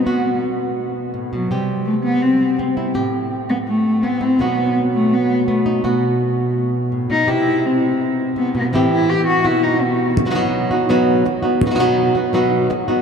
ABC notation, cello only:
X:1
M:4/4
L:1/8
Q:1/4=166
K:none
V:1 name="Cello"
B,2 z4 z ^F, | G,2 A, B, C2 z2 | z3 B, A,2 B, C | B,2 z A, B,2 A,2 |
z6 z ^D | E2 C2 z2 B, B, | C E G ^F E ^D B,2 | z8 |
z8 |]